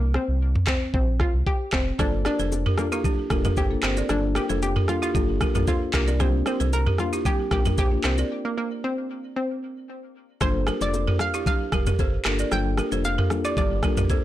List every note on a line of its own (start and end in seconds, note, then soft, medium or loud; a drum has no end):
0.00 0.18 C2 loud
0.00 0.13 A#3 loud
0.14 0.67 C4 loud
0.14 cross-stick medium
0.28 0.57 C2 medium
0.55 mid tom loud
0.67 0.93 C4 medium
0.67 kick loud
0.67 cross-stick medium
0.67 clap medium
0.94 1.23 A#1 medium
0.94 1.18 C4 medium
0.94 kick medium
1.20 1.32 F4 loud
1.20 kick loud
1.20 cross-stick medium
1.34 1.43 C2 medium
1.47 1.71 G4 loud
1.47 kick medium
1.73 1.92 F1 medium
1.73 1.97 C4 medium
1.73 kick medium
1.73 cross-stick loud
1.73 clap medium
1.99 2.28 G1 loud
1.99 2.47 A#3 medium
1.99 2.48 D4 medium
1.99 2.24 D4 loud
1.99 2.48 F4 medium
1.99 2.48 A4 loud
1.99 2.10 A4 medium
1.99 2.10 C5 medium
1.99 kick loud
1.99 cross-stick medium
1.99 low conga medium
1.99 shaker medium
2.25 2.75 D4 loud
2.25 2.36 G4 medium
2.25 2.36 A#4 medium
2.25 cross-stick medium
2.25 high bongo medium
2.25 shaker medium
2.39 2.68 F1 medium
2.39 2.49 A4 medium
2.39 2.49 C5 medium
2.39 low bongo medium
2.39 shaker medium
2.52 high bongo medium
2.52 shaker medium
2.66 2.76 G4 medium
2.66 2.75 A#4 medium
2.66 mid tom loud
2.77 2.98 A#3 medium
2.77 2.91 A#3 medium
2.77 2.98 D4 medium
2.77 2.98 F4 medium
2.77 2.98 A4 medium
2.77 cross-stick loud
2.77 low bongo medium
2.77 shaker medium
2.92 3.59 A#3 medium
2.92 3.02 E4 medium
2.92 3.01 G4 medium
2.92 shaker medium
3.04 3.15 D4 medium
3.04 3.15 G4 medium
3.04 kick medium
3.04 low conga medium
3.04 shaker medium
3.30 3.50 F1 medium
3.30 3.50 A#3 medium
3.30 3.50 D4 medium
3.30 3.51 F4 medium
3.30 3.42 G4 medium
3.30 3.51 A4 medium
3.30 3.41 A#4 medium
3.30 kick loud
3.30 cross-stick loud
3.30 low conga medium
3.30 shaker medium
3.45 3.55 G4 medium
3.45 3.54 A#4 medium
3.45 mid tom medium
3.45 low bongo medium
3.45 shaker medium
3.57 3.76 G1 medium
3.57 3.69 G4 loud
3.57 3.68 A4 medium
3.57 3.68 C5 medium
3.57 kick medium
3.57 high bongo medium
3.57 shaker medium
3.70 3.90 A#3 medium
3.70 3.90 D4 medium
3.70 3.90 F4 medium
3.70 3.90 A4 medium
3.83 4.02 G1 medium
3.83 4.11 C4 loud
3.83 3.94 G4 medium
3.83 3.94 A#4 medium
3.83 cross-stick medium
3.83 clap medium
3.83 shaker medium
3.97 4.07 A#4 medium
3.97 4.07 D5 medium
3.97 high bongo medium
3.97 shaker medium
4.09 4.39 G1 loud
4.09 4.29 A#3 loud
4.09 4.29 D4 medium
4.09 4.37 D4 loud
4.09 4.29 F4 medium
4.09 4.30 A4 loud
4.09 4.21 A4 medium
4.09 4.20 C5 medium
4.09 cross-stick medium
4.09 low conga medium
4.09 shaker medium
4.35 4.61 G4 loud
4.35 4.47 G4 medium
4.35 4.46 A#4 medium
4.35 cross-stick medium
4.35 high bongo medium
4.35 shaker medium
4.49 4.78 F1 medium
4.49 4.85 A#3 medium
4.49 4.85 D4 medium
4.49 4.85 F4 medium
4.49 4.85 A4 medium
4.49 4.60 A4 medium
4.49 4.59 C5 medium
4.49 low bongo medium
4.49 shaker medium
4.62 4.87 G4 loud
4.62 high bongo medium
4.62 shaker medium
4.76 4.86 G4 medium
4.76 4.85 A#4 medium
4.76 mid tom loud
4.88 5.12 A#3 medium
4.88 5.13 D4 medium
4.88 5.13 F4 medium
4.88 5.01 F4 loud
4.88 5.13 A4 medium
4.88 cross-stick medium
4.88 low bongo medium
4.88 shaker medium
5.02 5.12 E4 medium
5.02 5.64 F4 loud
5.02 5.12 G4 medium
5.02 shaker medium
5.14 5.44 G1 medium
5.14 5.51 A#3 medium
5.14 5.51 D4 medium
5.14 5.26 D4 medium
5.14 5.51 F4 medium
5.14 5.25 G4 medium
5.14 5.51 A4 loud
5.14 kick loud
5.14 low conga medium
5.14 shaker medium
5.41 5.52 G4 medium
5.41 5.51 A#4 medium
5.41 kick medium
5.41 cross-stick loud
5.41 low conga medium
5.41 shaker medium
5.54 5.64 A#1 medium
5.54 5.74 A#3 medium
5.54 5.74 D4 medium
5.54 5.74 F4 medium
5.54 5.65 G4 medium
5.54 5.74 A4 medium
5.54 5.64 A#4 medium
5.54 mid tom medium
5.54 low bongo medium
5.54 shaker medium
5.67 5.95 F4 loud
5.67 5.78 A4 medium
5.67 5.78 C5 medium
5.67 kick medium
5.67 high bongo medium
5.67 shaker medium
5.93 6.42 C2 medium
5.93 6.13 A#3 medium
5.93 6.21 A#3 loud
5.93 6.14 D4 medium
5.93 6.14 F4 medium
5.93 6.14 G4 medium
5.93 6.05 G4 medium
5.93 6.04 A#4 medium
5.93 kick medium
5.93 cross-stick medium
5.93 clap medium
5.93 shaker medium
6.07 6.17 A#4 medium
6.07 6.17 D5 medium
6.07 high bongo medium
6.07 shaker medium
6.19 6.68 A#3 medium
6.19 6.45 C4 loud
6.19 6.68 D4 medium
6.19 6.68 F4 medium
6.19 6.69 G4 loud
6.19 6.31 G4 medium
6.19 6.30 C5 medium
6.19 kick loud
6.19 cross-stick medium
6.19 low conga medium
6.19 shaker medium
6.46 6.74 C4 loud
6.46 6.57 G4 medium
6.46 6.57 A#4 medium
6.46 cross-stick medium
6.46 high bongo medium
6.46 shaker medium
6.60 6.89 C2 medium
6.60 6.70 A4 medium
6.60 6.70 C5 medium
6.60 low bongo medium
6.60 shaker medium
6.73 7.00 A#4 loud
6.73 high bongo medium
6.73 shaker medium
6.87 6.96 G4 medium
6.87 6.96 A#4 medium
6.87 mid tom loud
6.98 7.19 A#3 medium
6.98 7.19 D4 medium
6.98 7.19 F4 medium
6.98 7.27 F4 loud
6.98 7.19 G4 medium
6.98 cross-stick medium
6.98 low bongo medium
6.98 shaker medium
7.13 7.23 E4 medium
7.13 7.22 G4 medium
7.13 shaker medium
7.25 7.36 C4 medium
7.25 7.36 G4 medium
7.25 7.51 G4 loud
7.25 kick loud
7.25 low conga medium
7.25 shaker medium
7.51 7.71 A#1 loud
7.51 7.71 A#3 medium
7.51 7.71 D4 medium
7.51 7.72 F4 medium
7.51 7.72 G4 medium
7.51 7.77 G4 loud
7.51 7.63 G4 medium
7.51 7.62 A#4 medium
7.51 kick loud
7.51 cross-stick loud
7.51 low conga medium
7.51 shaker medium
7.65 7.75 G4 medium
7.65 7.75 A#4 medium
7.65 mid tom medium
7.65 low bongo medium
7.65 shaker medium
7.78 7.97 A#1 loud
7.78 7.90 G4 loud
7.78 7.89 G4 medium
7.78 7.88 C5 medium
7.78 kick loud
7.78 high bongo medium
7.78 shaker medium
7.91 8.11 A#3 medium
7.91 8.11 D4 medium
7.91 8.11 F4 medium
7.91 8.11 G4 medium
8.04 8.24 C2 medium
8.04 8.42 C4 loud
8.04 8.15 G4 medium
8.04 8.15 A#4 medium
8.04 cross-stick medium
8.04 clap medium
8.04 shaker medium
8.18 8.28 A#4 medium
8.18 8.28 D5 medium
8.18 high bongo medium
8.18 shaker medium
8.45 8.56 A#3 medium
8.58 8.82 A#3 medium
8.84 9.33 C4 loud
9.36 10.11 C4 medium
10.41 10.70 G1 loud
10.41 10.78 A#3 medium
10.41 10.78 D4 medium
10.41 10.78 F4 medium
10.41 10.78 A4 loud
10.41 10.52 A4 medium
10.41 10.52 C5 medium
10.41 10.79 C5 loud
10.41 kick loud
10.41 cross-stick medium
10.41 low conga medium
10.41 shaker medium
10.67 10.78 G4 medium
10.67 10.78 A#4 medium
10.67 cross-stick medium
10.67 low bongo medium
10.67 shaker medium
10.81 11.10 F1 medium
10.81 11.00 A#3 medium
10.81 11.01 D4 medium
10.81 11.01 F4 medium
10.81 11.01 A4 medium
10.81 10.91 A4 medium
10.81 10.91 C5 medium
10.81 11.22 D5 medium
10.81 low bongo medium
10.81 shaker medium
10.94 high bongo medium
10.94 shaker medium
11.07 11.17 G4 medium
11.07 11.17 A#4 medium
11.07 mid tom loud
11.19 11.45 F5 loud
11.19 cross-stick medium
11.19 low bongo medium
11.19 shaker medium
11.34 11.44 E4 medium
11.34 11.43 G4 medium
11.34 shaker medium
11.46 11.57 D4 medium
11.46 11.57 G4 medium
11.46 12.22 F5 loud
11.46 kick loud
11.46 low conga medium
11.46 shaker medium
11.72 11.92 F1 medium
11.72 11.84 G4 medium
11.72 11.83 A#4 medium
11.72 kick medium
11.72 cross-stick loud
11.72 low conga medium
11.72 shaker medium
11.87 11.97 G4 medium
11.87 11.96 A#4 medium
11.87 mid tom medium
11.87 low bongo medium
11.87 shaker medium
11.99 12.18 G1 medium
11.99 12.10 A4 medium
11.99 12.10 C5 medium
11.99 kick medium
11.99 high bongo medium
11.99 shaker medium
12.25 12.45 G1 medium
12.25 12.45 A#3 medium
12.25 12.45 D4 medium
12.25 12.45 F4 medium
12.25 12.36 G4 medium
12.25 12.46 A4 medium
12.25 12.36 A#4 medium
12.25 cross-stick medium
12.25 clap medium
12.25 shaker medium
12.39 12.49 A#4 medium
12.39 12.49 D5 medium
12.39 shaker medium
12.51 12.81 G1 loud
12.51 12.71 A#3 medium
12.51 12.72 D4 medium
12.51 12.72 F4 medium
12.51 12.72 A4 loud
12.51 12.63 A4 medium
12.51 12.62 C5 medium
12.51 13.06 G5 loud
12.51 cross-stick medium
12.51 low conga medium
12.51 shaker medium
12.78 12.89 G4 medium
12.78 12.89 A#4 medium
12.78 cross-stick medium
12.78 low bongo medium
12.78 shaker medium
12.91 13.20 F1 medium
12.91 13.27 A#3 medium
12.91 13.27 D4 medium
12.91 13.28 F4 medium
12.91 13.28 A4 medium
12.91 13.02 A4 medium
12.91 13.01 C5 medium
12.91 low bongo medium
12.91 shaker medium
13.05 13.42 F5 loud
13.05 high bongo medium
13.05 shaker medium
13.18 13.28 G4 medium
13.18 13.28 A#4 medium
13.18 mid tom loud
13.30 13.55 A#3 medium
13.30 13.55 D4 medium
13.30 13.55 F4 medium
13.30 13.55 A4 medium
13.30 cross-stick medium
13.30 low bongo medium
13.30 shaker medium
13.45 13.55 E4 medium
13.45 13.54 G4 medium
13.45 13.56 D5 medium
13.45 shaker medium
13.57 13.86 G1 medium
13.57 13.68 D4 medium
13.57 13.67 G4 medium
13.57 14.24 D5 medium
13.57 kick medium
13.57 low conga medium
13.57 shaker medium
13.83 14.03 A#3 medium
13.83 14.03 D4 medium
13.83 14.03 F4 medium
13.83 13.94 G4 medium
13.83 14.03 A4 medium
13.83 13.94 A#4 medium
13.83 kick medium
13.83 cross-stick loud
13.83 low conga medium
13.83 shaker medium
13.97 14.06 A#1 medium
13.97 14.07 G4 medium
13.97 14.07 A#4 medium
13.97 mid tom medium
13.97 low bongo medium
13.97 shaker medium
14.09 14.21 A4 medium
14.09 14.20 C5 medium
14.09 kick medium
14.09 high bongo medium
14.09 shaker medium